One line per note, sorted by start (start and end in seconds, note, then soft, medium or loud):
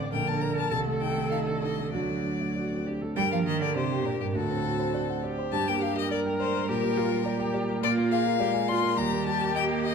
0.00 0.12 A1 medium
0.00 0.12 D3 medium
0.00 0.15 C4 medium
0.00 0.16 D4 medium
0.00 0.13 D5 medium
0.12 0.70 A#1 medium
0.12 0.70 D3 medium
0.12 0.73 A#4 medium
0.12 0.29 G5 medium
0.27 0.51 A#3 medium
0.27 0.43 A5 medium
0.41 0.66 D4 medium
0.41 0.56 A#5 medium
0.56 0.72 A#3 medium
0.56 0.70 A5 loud
0.71 1.89 C2 medium
0.71 1.95 D#3 medium
0.71 1.93 A4 medium
0.71 0.79 A5 loud
0.87 1.11 A3 medium
1.00 1.25 D#4 medium
1.00 1.30 G5 medium
1.17 1.41 A3 medium
1.31 1.56 D#4 medium
1.31 1.39 F5 medium
1.47 1.62 D4 soft
1.62 1.87 D#4 medium
1.62 1.92 D#5 medium
1.78 1.94 A3 soft
1.93 3.14 D2 medium
1.93 2.96 F#3 medium
1.93 2.48 F#4 medium
1.93 2.84 D5 medium
2.09 2.34 A3 medium
2.25 2.49 D4 soft
2.40 2.65 A3 soft
2.55 2.80 D4 soft
2.55 2.88 F#4 medium
2.71 2.87 C4 soft
2.86 3.11 D4 soft
2.86 3.03 G4 medium
3.01 3.17 A3 soft
3.01 3.16 A4 medium
3.16 4.32 G2 medium
3.16 3.22 G3 loud
3.16 3.77 A#4 medium
3.16 3.30 G5 loud
3.32 3.45 F3 medium
3.32 3.56 A#3 medium
3.32 3.38 F5 medium
3.46 3.62 D#3 medium
3.46 3.70 G4 medium
3.46 3.60 D#5 medium
3.61 3.77 D3 medium
3.61 3.75 D5 medium
3.75 4.06 C3 medium
3.75 4.36 G4 medium
3.75 4.06 C5 medium
3.75 4.00 D5 medium
3.91 4.14 G5 medium
4.04 4.18 A#2 medium
4.04 4.20 A#4 medium
4.04 4.29 D5 medium
4.19 4.35 G2 medium
4.19 4.26 G4 medium
4.19 4.35 A#4 medium
4.33 5.49 D2 medium
4.33 5.22 A2 medium
4.33 4.93 F#4 medium
4.33 5.22 A4 loud
4.50 4.73 C4 medium
4.65 4.88 F#4 medium
4.79 5.03 C5 medium
4.94 5.02 F#4 medium
4.94 5.17 D5 medium
5.09 5.32 F#5 medium
5.24 6.10 G4 medium
5.24 5.47 D5 medium
5.38 5.53 C5 medium
5.52 6.66 G2 medium
5.52 7.79 G3 medium
5.52 5.69 A5 loud
5.67 5.91 A#3 medium
5.67 5.84 G5 medium
5.82 6.05 G4 medium
5.82 5.97 F5 loud
5.97 6.20 A#4 medium
5.97 6.11 D#5 loud
6.11 6.70 A#4 medium
6.11 6.34 D5 medium
6.11 6.19 D5 loud
6.26 6.49 G5 medium
6.40 6.68 C5 loud
6.40 6.63 D5 medium
6.55 6.69 A#4 medium
6.69 7.79 A#2 medium
6.69 6.99 G4 medium
6.69 7.53 A#4 loud
6.83 7.06 A#3 medium
6.97 7.25 F4 medium
6.97 7.20 G4 medium
7.11 7.34 A#4 medium
7.26 7.82 G4 medium
7.26 7.49 D5 medium
7.40 7.63 G5 medium
7.54 7.77 D5 medium
7.69 7.83 A#4 medium
7.83 8.94 A#2 medium
7.83 8.41 A#3 medium
7.83 8.39 F4 medium
7.83 7.91 D5 loud
7.97 8.20 A#3 medium
8.11 8.34 G#4 medium
8.11 8.70 F5 loud
8.26 8.49 A#4 medium
8.40 8.99 G#3 medium
8.40 8.49 G4 medium
8.40 8.63 D5 medium
8.54 8.77 G#5 medium
8.68 8.97 F4 medium
8.68 8.92 D5 medium
8.68 8.99 C6 loud
8.83 8.97 A#4 medium
8.97 9.95 D#2 medium
8.97 9.55 G3 medium
8.97 9.95 G4 loud
8.97 9.25 A#5 loud
9.12 9.35 A#3 medium
9.26 9.50 G4 medium
9.26 9.55 A5 loud
9.41 9.64 A#4 medium
9.55 9.95 A#3 medium
9.55 9.79 D#5 medium
9.55 9.63 G5 loud
9.71 9.94 G5 medium
9.84 9.95 D#5 loud
9.84 9.95 D#5 medium